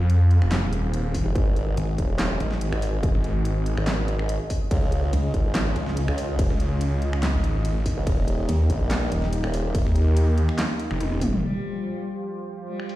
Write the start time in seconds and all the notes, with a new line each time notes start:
Already playing: F2 C4 F4 G#4 F5
0.10 closed hi-hat
0.31 closed hi-hat
0.42 F1, finger snap
0.52 snare, clap, closed hi-hat
0.63 D#1
0.73 closed hi-hat
0.94 closed hi-hat
1.14 kick, open hi-hat
1.26 F1
1.35 G#1 F#4 D#5, kick, closed hi-hat
1.56 closed hi-hat
1.77 G#1, closed hi-hat
1.98 D#1, kick, closed hi-hat
2.19 snare, clap, closed hi-hat
2.40 G#1, closed hi-hat
2.52 snare
2.61 closed hi-hat
2.73 G#1, finger snap
2.82 open hi-hat
3.03 kick, closed hi-hat
3.15 G#1
3.24 closed hi-hat
3.45 closed hi-hat
3.66 closed hi-hat
3.77 G#1, finger snap
3.87 snare, clap, closed hi-hat
4.08 closed hi-hat
4.19 finger snap
4.29 closed hi-hat
4.50 kick, open hi-hat
4.71 C#2 C#4 F4, kick, closed hi-hat, ride
4.92 closed hi-hat
5.13 C#2, closed hi-hat, ride
5.34 G#1, kick, closed hi-hat
5.55 snare, clap, closed hi-hat, ride
5.76 C#2, closed hi-hat
5.87 snare
5.97 closed hi-hat, ride
6.08 C#2, finger snap
6.18 open hi-hat
6.39 kick, closed hi-hat, ride
6.50 C#2
6.60 closed hi-hat
6.81 closed hi-hat, ride
7.02 closed hi-hat
7.13 C#2, finger snap
7.23 snare, clap, closed hi-hat, ride
7.34 G#1
7.44 closed hi-hat
7.65 closed hi-hat, ride
7.86 kick, open hi-hat
7.97 C#2
8.07 D#1 A#3 D#4 G4, kick, closed hi-hat, ride
8.28 closed hi-hat
8.49 D#2, closed hi-hat, ride
8.70 A#1, kick, closed hi-hat
8.91 snare, clap, closed hi-hat, ride
9.12 D#1, closed hi-hat
9.23 snare
9.33 closed hi-hat, ride
9.44 D#1, finger snap
9.54 open hi-hat
9.75 kick, closed hi-hat, ride
9.86 D#2
9.96 closed hi-hat
10.17 closed hi-hat, ride
10.38 closed hi-hat
10.49 finger snap
10.59 snare, clap, closed hi-hat, ride
10.80 closed hi-hat
10.91 F1, finger snap
11.01 closed hi-hat, high tom, ride
11.12 D#1, high tom
11.21 kick, open hi-hat, mid tom
11.33 mid tom
11.42 F3 G3 F4 G4 C5
12.68 G3
12.80 finger snap
12.89 open hi-hat